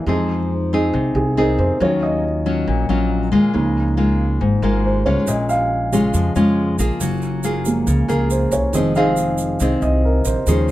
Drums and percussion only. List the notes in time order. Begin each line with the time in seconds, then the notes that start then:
5.27 shaker
5.49 shaker
5.93 shaker
6.14 shaker
6.36 shaker
6.79 shaker
7.01 shaker
7.22 shaker
7.43 shaker
7.65 shaker
7.87 shaker
8.09 shaker
8.30 shaker
8.52 shaker
8.74 shaker
8.95 shaker
9.17 shaker
9.38 shaker
9.60 shaker
9.82 shaker
10.25 shaker
10.47 shaker